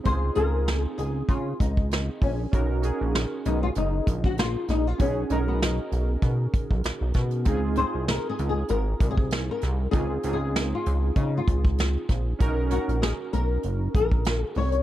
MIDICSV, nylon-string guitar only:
0, 0, Header, 1, 2, 480
1, 0, Start_track
1, 0, Key_signature, -5, "major"
1, 0, Tempo, 617284
1, 47, Time_signature, 4, 2, 24, 8
1, 11529, End_track
2, 0, Start_track
2, 0, Title_t, "Nylon-string guitar"
2, 0, Program_c, 0, 24
2, 47, Note_on_c, 0, 72, 110
2, 274, Note_off_c, 0, 72, 0
2, 277, Note_on_c, 0, 70, 99
2, 627, Note_off_c, 0, 70, 0
2, 627, Note_on_c, 0, 68, 99
2, 731, Note_off_c, 0, 68, 0
2, 760, Note_on_c, 0, 68, 91
2, 986, Note_off_c, 0, 68, 0
2, 1004, Note_on_c, 0, 65, 83
2, 1245, Note_off_c, 0, 65, 0
2, 1248, Note_on_c, 0, 63, 82
2, 1735, Note_on_c, 0, 61, 77
2, 1741, Note_off_c, 0, 63, 0
2, 2179, Note_off_c, 0, 61, 0
2, 2693, Note_on_c, 0, 63, 89
2, 2819, Note_off_c, 0, 63, 0
2, 2822, Note_on_c, 0, 65, 102
2, 2861, Note_off_c, 0, 65, 0
2, 2937, Note_on_c, 0, 63, 90
2, 3303, Note_off_c, 0, 63, 0
2, 3306, Note_on_c, 0, 66, 99
2, 3410, Note_off_c, 0, 66, 0
2, 3414, Note_on_c, 0, 65, 103
2, 3651, Note_off_c, 0, 65, 0
2, 3654, Note_on_c, 0, 63, 94
2, 3789, Note_off_c, 0, 63, 0
2, 3789, Note_on_c, 0, 65, 86
2, 3891, Note_off_c, 0, 65, 0
2, 3893, Note_on_c, 0, 61, 94
2, 4135, Note_on_c, 0, 63, 85
2, 4137, Note_off_c, 0, 61, 0
2, 4174, Note_off_c, 0, 63, 0
2, 4262, Note_on_c, 0, 59, 76
2, 4371, Note_off_c, 0, 59, 0
2, 4375, Note_on_c, 0, 63, 72
2, 4819, Note_off_c, 0, 63, 0
2, 6046, Note_on_c, 0, 72, 98
2, 6290, Note_off_c, 0, 72, 0
2, 6293, Note_on_c, 0, 70, 86
2, 6447, Note_off_c, 0, 70, 0
2, 6450, Note_on_c, 0, 68, 95
2, 6594, Note_off_c, 0, 68, 0
2, 6604, Note_on_c, 0, 68, 89
2, 6753, Note_off_c, 0, 68, 0
2, 6763, Note_on_c, 0, 70, 91
2, 7078, Note_off_c, 0, 70, 0
2, 7081, Note_on_c, 0, 68, 84
2, 7392, Note_off_c, 0, 68, 0
2, 7395, Note_on_c, 0, 70, 86
2, 7705, Note_off_c, 0, 70, 0
2, 7708, Note_on_c, 0, 68, 102
2, 8014, Note_off_c, 0, 68, 0
2, 8032, Note_on_c, 0, 68, 90
2, 8357, Note_on_c, 0, 65, 80
2, 8369, Note_off_c, 0, 68, 0
2, 8676, Note_off_c, 0, 65, 0
2, 8679, Note_on_c, 0, 63, 79
2, 8831, Note_off_c, 0, 63, 0
2, 8845, Note_on_c, 0, 65, 82
2, 9534, Note_off_c, 0, 65, 0
2, 9893, Note_on_c, 0, 66, 74
2, 10124, Note_on_c, 0, 68, 81
2, 10136, Note_off_c, 0, 66, 0
2, 10189, Note_off_c, 0, 68, 0
2, 10365, Note_on_c, 0, 70, 96
2, 10840, Note_off_c, 0, 70, 0
2, 10850, Note_on_c, 0, 70, 101
2, 11223, Note_off_c, 0, 70, 0
2, 11223, Note_on_c, 0, 68, 101
2, 11330, Note_off_c, 0, 68, 0
2, 11333, Note_on_c, 0, 73, 96
2, 11529, Note_off_c, 0, 73, 0
2, 11529, End_track
0, 0, End_of_file